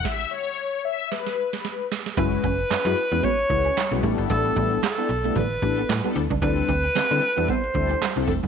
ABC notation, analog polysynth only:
X:1
M:4/4
L:1/16
Q:"Swing 16ths" 1/4=113
K:Alyd
V:1 name="Analog polysynth"
e2 c4 e2 B6 z2 | [G,CEFB]2 z3 [G,CEFB] z [G,CEFB] z2 [G,CEFB] z2 [G,CEFB] [=G,B,=DEA]2- | [=G,B,=DEA]4 z [G,B,DEA] z [G,B,DEA] z2 [G,B,DEA] z2 [G,B,DEA] z2 | [=G,=C=DEA]2 z3 [G,CDEA] z [G,CDEA] z2 [G,CDEA] z2 [G,CDEA] z2 |]